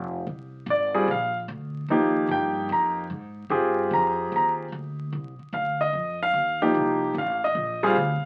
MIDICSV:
0, 0, Header, 1, 4, 480
1, 0, Start_track
1, 0, Key_signature, -3, "minor"
1, 0, Tempo, 404858
1, 324, Time_signature, 4, 2, 24, 8
1, 9785, End_track
2, 0, Start_track
2, 0, Title_t, "Grand piano"
2, 0, Program_c, 0, 0
2, 834, Note_on_c, 0, 74, 74
2, 1119, Note_on_c, 0, 55, 70
2, 1120, Note_on_c, 0, 60, 64
2, 1120, Note_on_c, 0, 68, 80
2, 1123, Note_on_c, 0, 65, 62
2, 1266, Note_off_c, 0, 55, 0
2, 1266, Note_off_c, 0, 60, 0
2, 1266, Note_off_c, 0, 68, 0
2, 1266, Note_off_c, 0, 74, 0
2, 1268, Note_off_c, 0, 65, 0
2, 1316, Note_on_c, 0, 77, 80
2, 1610, Note_off_c, 0, 77, 0
2, 2254, Note_on_c, 0, 53, 72
2, 2257, Note_on_c, 0, 63, 70
2, 2263, Note_on_c, 0, 58, 68
2, 2270, Note_on_c, 0, 67, 80
2, 2744, Note_on_c, 0, 79, 79
2, 3181, Note_off_c, 0, 79, 0
2, 3229, Note_on_c, 0, 82, 79
2, 3526, Note_off_c, 0, 82, 0
2, 3592, Note_off_c, 0, 53, 0
2, 3594, Note_off_c, 0, 63, 0
2, 3597, Note_off_c, 0, 58, 0
2, 3601, Note_off_c, 0, 67, 0
2, 4153, Note_on_c, 0, 67, 70
2, 4154, Note_on_c, 0, 60, 62
2, 4161, Note_on_c, 0, 65, 64
2, 4164, Note_on_c, 0, 68, 77
2, 4666, Note_on_c, 0, 82, 80
2, 5102, Note_off_c, 0, 82, 0
2, 5168, Note_on_c, 0, 82, 78
2, 5346, Note_off_c, 0, 82, 0
2, 5501, Note_off_c, 0, 67, 0
2, 5502, Note_off_c, 0, 60, 0
2, 5506, Note_off_c, 0, 65, 0
2, 5507, Note_off_c, 0, 68, 0
2, 6566, Note_on_c, 0, 77, 73
2, 6874, Note_off_c, 0, 77, 0
2, 6885, Note_on_c, 0, 75, 84
2, 7330, Note_off_c, 0, 75, 0
2, 7381, Note_on_c, 0, 77, 96
2, 7818, Note_off_c, 0, 77, 0
2, 7847, Note_on_c, 0, 53, 73
2, 7847, Note_on_c, 0, 63, 66
2, 7848, Note_on_c, 0, 67, 82
2, 7856, Note_on_c, 0, 58, 63
2, 8453, Note_off_c, 0, 53, 0
2, 8453, Note_off_c, 0, 63, 0
2, 8453, Note_off_c, 0, 67, 0
2, 8457, Note_off_c, 0, 58, 0
2, 8516, Note_on_c, 0, 77, 78
2, 8809, Note_off_c, 0, 77, 0
2, 8824, Note_on_c, 0, 75, 84
2, 9259, Note_off_c, 0, 75, 0
2, 9283, Note_on_c, 0, 55, 83
2, 9287, Note_on_c, 0, 60, 73
2, 9287, Note_on_c, 0, 65, 78
2, 9288, Note_on_c, 0, 68, 90
2, 9326, Note_on_c, 0, 77, 81
2, 9426, Note_off_c, 0, 55, 0
2, 9428, Note_off_c, 0, 60, 0
2, 9428, Note_off_c, 0, 65, 0
2, 9429, Note_off_c, 0, 68, 0
2, 9751, Note_off_c, 0, 77, 0
2, 9785, End_track
3, 0, Start_track
3, 0, Title_t, "Upright bass"
3, 0, Program_c, 1, 32
3, 0, Note_on_c, 1, 29, 83
3, 301, Note_off_c, 1, 29, 0
3, 316, Note_on_c, 1, 36, 81
3, 778, Note_off_c, 1, 36, 0
3, 785, Note_on_c, 1, 32, 90
3, 1259, Note_off_c, 1, 32, 0
3, 1277, Note_on_c, 1, 34, 84
3, 1746, Note_off_c, 1, 34, 0
3, 1757, Note_on_c, 1, 38, 90
3, 2226, Note_off_c, 1, 38, 0
3, 2234, Note_on_c, 1, 39, 83
3, 2704, Note_off_c, 1, 39, 0
3, 2709, Note_on_c, 1, 43, 85
3, 3182, Note_off_c, 1, 43, 0
3, 3191, Note_on_c, 1, 41, 86
3, 3663, Note_off_c, 1, 41, 0
3, 3675, Note_on_c, 1, 44, 82
3, 4136, Note_off_c, 1, 44, 0
3, 4143, Note_on_c, 1, 43, 76
3, 4618, Note_off_c, 1, 43, 0
3, 4632, Note_on_c, 1, 41, 83
3, 5103, Note_off_c, 1, 41, 0
3, 5119, Note_on_c, 1, 39, 81
3, 5586, Note_off_c, 1, 39, 0
3, 5598, Note_on_c, 1, 38, 85
3, 6066, Note_off_c, 1, 38, 0
3, 6076, Note_on_c, 1, 36, 82
3, 6376, Note_off_c, 1, 36, 0
3, 6551, Note_on_c, 1, 38, 85
3, 7022, Note_off_c, 1, 38, 0
3, 7030, Note_on_c, 1, 41, 77
3, 7501, Note_off_c, 1, 41, 0
3, 7509, Note_on_c, 1, 39, 88
3, 7981, Note_off_c, 1, 39, 0
3, 7995, Note_on_c, 1, 36, 85
3, 8464, Note_off_c, 1, 36, 0
3, 8471, Note_on_c, 1, 33, 87
3, 8941, Note_off_c, 1, 33, 0
3, 8950, Note_on_c, 1, 34, 82
3, 9421, Note_off_c, 1, 34, 0
3, 9431, Note_on_c, 1, 38, 92
3, 9732, Note_off_c, 1, 38, 0
3, 9785, End_track
4, 0, Start_track
4, 0, Title_t, "Muted upright bass strokes"
4, 6395, Note_on_c, 9, 29, 41
4, 6513, Note_off_c, 9, 29, 0
4, 9739, Note_on_c, 9, 29, 41
4, 9785, Note_off_c, 9, 29, 0
4, 9785, End_track
0, 0, End_of_file